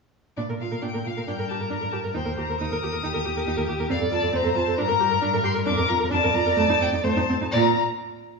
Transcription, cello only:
0.38 A#2
0.49 A#2
0.61 A#2
0.72 A#2
0.83 A#2
0.95 A#2
1.06 A#2
1.17 A#2
1.28 G2
1.39 G2
1.50 G2
1.60 G2
1.72 G2
1.83 G2
1.94 G2
2.05 G2
2.15 D#2
2.26 D#2
2.38 D#2
2.49 D#2
2.60 D#2
2.72 D#2
2.83 D#2
2.94 D#2
3.04 D#2
3.15 D#2
3.26 D#2
3.36 D#2
3.47 D#2
3.58 D#2
3.69 D#2
3.80 D#2
3.90 F2
4.01 F2
4.12 F2
4.23 F2
4.34 F2
4.45 F2
4.56 F2
4.68 F2
4.80 G2
4.91 G2
5.02 G2
5.13 G2
5.24 G2
5.35 G2
5.47 G2
5.58 G2
5.69 F2
5.79 F2
5.91 F2
6.03 F2
6.13 F2
6.25 F2
6.35 F2
6.47 F2
6.58 F2
6.69 F2
6.81 F2
6.92 F2
7.04 F2
7.17 F2
7.29 F2
7.41 F2
7.53 A#2

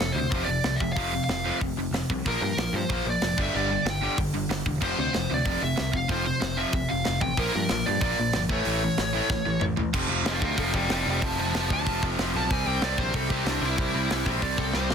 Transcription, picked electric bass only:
0.00 F1
0.15 D2
0.32 F1
0.48 F1
0.65 C2
0.80 F1
0.96 F1
1.29 F1
1.62 F1
1.76 F1
1.91 F1
2.10 C2
2.25 A#1
2.41 G2
2.57 A#1
2.73 G2
2.89 A#1
3.05 A#1
3.22 F1
3.38 G1
3.55 G1
3.85 G1
4.18 G1
4.33 G1
4.50 G1
4.67 E1
4.82 F1
4.99 D2
5.15 F1
5.31 D2
5.46 F1
5.62 F1
5.79 C2
5.93 F1
6.09 F1
6.42 F1
6.73 F1
6.91 F1
7.08 F1
7.21 A1
7.38 A#1
7.55 G2
7.71 A#1
7.88 G2
8.01 A#1
8.19 A#1
8.35 G1
8.49 A1
8.67 A1
8.99 A1
9.30 A1
9.47 A1
9.62 A1
9.77 A1
9.94 F1
10.09 F1
10.24 F1
10.41 D2
10.58 F1
10.74 F1
10.89 F1
11.06 F1
11.39 F1
11.55 F1
11.70 D2
11.86 F1
12.02 F1
12.19 F1
12.34 B1
12.51 C2
12.66 C2
12.82 C2
12.98 A#1
13.14 C2
13.30 C2
13.45 C2
13.61 C2
13.78 C2
13.94 C2
14.11 C2
14.26 A#1
14.42 C2
14.58 C2
14.75 C2

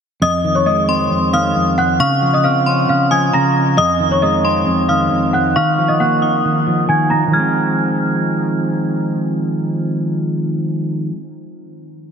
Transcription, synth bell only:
0.22 D#6
0.89 C6
1.34 D#6
2.00 C#6
2.66 C6
3.11 D#6
3.78 D#6
4.45 C6
4.89 D#6
5.56 C#6
6.22 D#6
7.33 F6

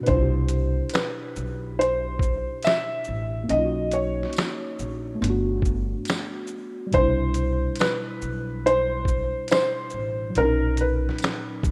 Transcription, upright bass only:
0.08 C2
1.37 B1
3.08 A1
3.50 B1
4.80 A#1
5.22 G1
6.94 C2
8.22 B1
9.94 A1
10.36 B1
11.63 A#1

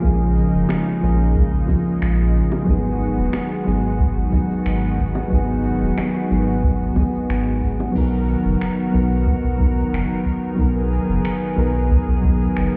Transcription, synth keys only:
Already playing: A#3 C#4 G#4
0.00 F3 A#3
0.04 C#4 G#4
1.01 F3 A#3 C#4 G#4
1.65 F3 A#3
1.69 C#4 G#4
2.64 F#3 B3
2.69 D#4 G#4
3.65 F#3 B3 D#4 G#4
4.29 F#3 B3
4.33 D#4 G#4
5.28 F#3 B3
5.33 D#4 G#4
6.30 F#3 B3 D#4 G#4
6.94 F#3 B3
6.98 D#4 G#4
7.92 F#3 B3 D#4
7.98 A#4
8.91 F#3 B3 D#4 A#4
9.57 F#3 B3 D#4
9.63 A#4
10.55 F#3 B3 D#4
10.61 A#4
11.56 F#3 B3 D#4 A#4
12.21 F#3 B3
12.25 D#4 A#4

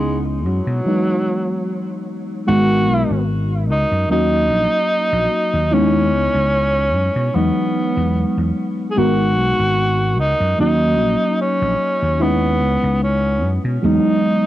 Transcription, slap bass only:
Already playing: C#2
0.46 F#2
0.67 B2
2.48 G#1
2.89 B1
3.10 G#1
3.70 C#2
3.91 F#2
4.11 D#2
4.51 A#1
5.12 A#1
5.53 D#2
6.13 C#2
6.34 C#2
6.94 F#2
7.16 B2
7.35 E2
7.97 E2
8.37 E2
8.97 G#1
9.38 B1
9.59 G#1
10.19 C#2
10.40 F#2
10.60 D#2
11.00 A#1
11.62 A#1
12.02 D#2
12.62 C#2
12.83 C#2
13.43 F#2
13.64 B2
13.84 E2

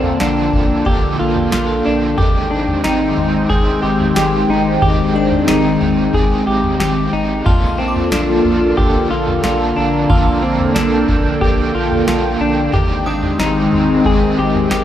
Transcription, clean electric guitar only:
Already playing: C4
0.21 D4
0.86 G4
1.19 F4
1.52 F4
1.86 D4
2.18 G4
2.51 D4
2.84 D#4
3.50 G#4
3.82 G4
4.16 G4
4.50 D#4
4.82 G4
5.15 D4
5.48 D#4
6.14 G#4
6.47 G4
6.80 G4
7.13 D#4
7.46 F4
7.78 C4
8.12 D4
8.77 G4
9.11 F4
9.44 F4
9.77 D4
10.10 F4
10.42 C4
10.75 D4
11.41 G4
11.75 F4
12.08 F4
12.41 D4
12.74 G4
13.07 D4
13.39 D#4
14.06 G#4
14.39 G4
14.71 G4

